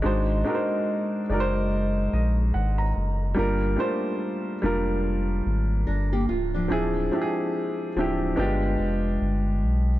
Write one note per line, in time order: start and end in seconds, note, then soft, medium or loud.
0.02 0.44 G#1 loud
0.02 0.41 G#3 medium
0.02 0.42 D4 medium
0.02 0.42 D#4 medium
0.02 0.43 F#4 medium
0.02 0.43 C5 medium
0.44 1.21 G#3 medium
0.44 1.22 D4 medium
0.44 1.22 D#4 medium
0.44 1.23 F#4 medium
0.44 0.55 A#4 medium
0.55 1.26 C5 medium
1.30 2.08 F#1 medium
1.30 2.82 G#3 medium
1.30 2.83 D#4 medium
1.30 2.83 F#4 medium
1.30 1.39 A#4 medium
1.30 2.82 D5 medium
1.40 2.87 C5 loud
2.13 2.52 A#1 medium
2.13 2.51 D#5 medium
2.54 2.94 G#1 medium
2.54 2.78 F#5 medium
2.78 3.32 A#5 medium
2.97 3.36 F#1 medium
3.34 3.77 G1 loud
3.34 3.74 G3 medium
3.34 3.75 A#3 medium
3.34 3.75 D4 medium
3.34 3.75 F4 medium
3.39 3.76 A#4 medium
3.76 4.54 G3 medium
3.76 3.86 A3 medium
3.76 4.55 D4 medium
3.76 4.55 F4 medium
3.76 4.56 C5 loud
3.84 4.58 A#3 medium
4.62 5.42 F1 medium
4.62 6.15 G3 medium
4.62 6.15 A#3 medium
4.62 6.15 D4 medium
4.62 6.16 F4 medium
4.62 6.16 A#4 medium
5.46 5.85 G#1 loud
5.87 6.27 G1 medium
5.87 6.12 D4 medium
5.87 6.11 A#4 medium
6.12 6.28 A#3 medium
6.12 6.28 G4 medium
6.29 6.69 C#1 medium
6.29 6.53 F4 medium
6.54 6.95 F3 medium
6.54 6.94 D4 medium
6.68 7.10 D1 loud
6.68 7.07 F3 medium
6.68 7.08 C4 medium
6.68 7.08 D4 medium
6.68 7.09 E4 medium
6.68 7.09 G#4 loud
7.12 7.88 F3 medium
7.12 7.88 C4 medium
7.12 7.89 D4 medium
7.12 7.89 E4 medium
7.12 7.21 G4 medium
7.22 7.93 G#4 medium
7.96 8.35 D1 medium
7.96 8.38 F3 medium
7.96 8.38 C4 medium
7.96 8.36 D4 medium
7.96 8.39 E4 medium
7.96 8.38 G4 medium
8.36 8.77 G1 loud
8.36 9.89 G#3 medium
8.36 9.89 B3 medium
8.36 9.90 D4 medium
8.36 9.90 F4 medium
8.36 9.91 G4 loud
8.79 9.18 F1 medium
9.21 9.64 G1 medium
9.63 9.99 B1 medium